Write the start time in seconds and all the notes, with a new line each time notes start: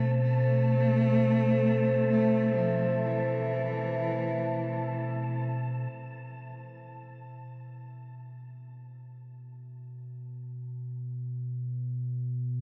Already playing: B2 A3 C5 A5
0.09 A4
0.22 A3
1.72 E5
2.11 A3
2.58 F3
3.05 E3
5.91 B2